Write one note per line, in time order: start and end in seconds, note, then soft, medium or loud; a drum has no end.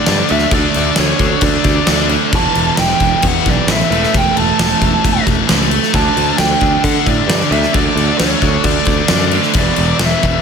0.00 0.28 D3 loud
0.00 0.51 D3 medium
0.00 0.29 A3 loud
0.00 0.52 A3 medium
0.00 0.28 D4 loud
0.00 0.51 D4 medium
0.00 2.29 D4 medium
0.00 2.29 A4 medium
0.00 0.31 D5 medium
0.00 2.29 E5 medium
0.06 0.21 G2 loud
0.06 snare loud
0.06 crash medium
0.29 0.44 D2 loud
0.29 0.50 D3 medium
0.29 0.52 A3 medium
0.29 0.51 D4 medium
0.29 0.53 E5 medium
0.29 crash medium
0.39 snare soft
0.51 0.65 D2 loud
0.51 1.19 D3 medium
0.51 1.19 A3 loud
0.51 1.19 D4 loud
0.51 0.99 D5 medium
0.51 kick loud
0.51 crash medium
0.74 0.90 D2 medium
0.74 crash medium
0.96 1.12 D2 medium
0.96 1.40 C#5 medium
0.96 snare loud
0.96 crash medium
1.19 1.34 D2 medium
1.19 2.33 D3 medium
1.19 2.32 A3 medium
1.19 2.32 D4 medium
1.19 kick medium
1.19 crash medium
1.41 1.56 D2 loud
1.41 2.07 D5 medium
1.41 kick medium
1.41 crash medium
1.64 1.79 D2 medium
1.64 kick medium
1.64 crash medium
1.87 2.15 D2 medium
1.87 snare loud
1.87 crash medium
1.98 snare soft
2.09 2.32 D3 medium
2.09 2.32 A3 medium
2.09 2.31 D4 loud
2.09 crash medium
2.32 2.46 E1 medium
2.32 3.03 E2 loud
2.32 3.00 B2 loud
2.32 5.91 E4 medium
2.32 5.91 B4 medium
2.32 3.90 G5 medium
2.32 2.76 A5 loud
2.32 kick loud
2.32 crash medium
2.36 3.00 E3 loud
2.55 2.69 E1 medium
2.55 crash medium
2.77 2.92 E1 medium
2.77 3.21 G5 medium
2.77 snare loud
2.77 crash medium
3.00 3.14 E1 medium
3.00 3.91 E2 medium
3.00 3.88 B2 medium
3.00 3.89 E3 medium
3.00 kick medium
3.00 crash medium
3.22 3.37 E2 loud
3.22 kick medium
3.22 crash medium
3.27 3.49 F#5 loud
3.46 3.60 B1 medium
3.46 3.71 D5 medium
3.46 kick medium
3.46 crash medium
3.67 3.81 A1 loud
3.67 snare loud
3.67 crash medium
3.72 4.12 E5 medium
3.80 snare soft
3.89 4.04 E1 loud
3.89 4.56 A2 medium
3.89 4.58 E3 loud
3.89 5.93 A3 medium
3.89 crash medium
3.93 4.60 A3 loud
4.04 snare soft
4.14 4.28 E1 loud
4.14 4.38 G5 medium
4.14 kick loud
4.14 crash medium
4.37 4.51 E1 medium
4.37 5.23 A5 medium
4.37 crash medium
4.57 4.73 E1 medium
4.57 5.70 A2 medium
4.57 5.70 E3 medium
4.57 5.94 A3 medium
4.57 snare loud
4.57 crash medium
4.81 4.95 E1 medium
4.81 kick medium
4.81 crash medium
5.04 5.18 E1 loud
5.04 kick medium
5.04 crash medium
5.27 5.41 E1 medium
5.27 kick medium
5.27 crash medium
5.48 5.77 C#2 medium
5.48 5.70 A2 medium
5.48 5.70 E3 medium
5.48 5.95 A3 medium
5.48 snare loud
5.48 crash medium
5.61 snare soft
5.71 crash medium
5.83 snare soft
5.92 6.08 D2 medium
5.92 6.62 D3 medium
5.92 6.61 A3 loud
5.92 9.53 D4 medium
5.92 6.60 D4 loud
5.92 9.53 A4 medium
5.92 9.53 E5 medium
5.92 6.37 A5 loud
5.92 kick loud
5.92 crash medium
6.17 6.30 D2 medium
6.17 crash medium
6.38 6.53 D2 medium
6.38 6.83 G5 loud
6.38 snare loud
6.38 crash medium
6.60 6.76 D2 medium
6.60 7.72 D3 medium
6.60 7.73 A3 medium
6.60 7.73 D4 medium
6.60 kick medium
6.60 crash medium
6.84 6.98 D3 loud
6.84 7.07 F#5 loud
6.84 kick medium
6.84 crash medium
7.06 7.20 A2 medium
7.06 7.52 D5 medium
7.06 kick medium
7.06 crash medium
7.27 7.42 G2 loud
7.27 snare loud
7.27 crash medium
7.41 snare soft
7.51 7.65 D2 loud
7.51 7.71 D3 medium
7.51 7.72 A3 medium
7.51 7.73 D4 loud
7.51 7.75 E5 medium
7.51 crash medium
7.63 snare soft
7.73 7.89 D2 medium
7.73 8.40 D3 medium
7.73 8.41 A3 loud
7.73 8.39 D4 medium
7.73 8.18 D5 medium
7.73 kick loud
7.73 crash medium
7.96 8.10 D2 medium
7.96 crash medium
8.18 8.34 D2 medium
8.18 8.64 C#5 medium
8.18 snare loud
8.18 crash medium
8.41 8.56 D2 medium
8.41 9.55 D3 medium
8.41 9.54 A3 medium
8.41 9.53 D4 medium
8.41 kick medium
8.41 crash medium
8.64 8.78 D2 loud
8.64 9.29 D5 medium
8.64 kick medium
8.64 crash medium
8.85 9.01 D2 medium
8.85 kick medium
8.85 crash medium
9.08 9.38 F#2 medium
9.08 snare loud
9.08 crash medium
9.20 snare soft
9.31 9.55 D3 medium
9.31 9.55 A3 medium
9.31 9.54 D4 loud
9.31 crash medium
9.43 snare soft
9.54 9.69 E1 loud
9.54 10.25 E2 medium
9.54 10.22 B2 medium
9.54 10.21 E3 loud
9.54 10.42 E4 medium
9.54 10.42 B4 medium
9.54 kick loud
9.54 crash medium
9.58 10.04 D5 medium
9.58 10.42 G5 medium
9.76 9.92 E1 medium
9.76 crash medium
9.99 10.13 E1 medium
9.99 snare loud
9.99 crash medium
10.05 10.42 E5 loud
10.21 10.37 E1 medium
10.21 10.42 B2 medium
10.21 10.42 E3 medium
10.21 kick medium
10.21 crash medium
10.26 10.42 E2 medium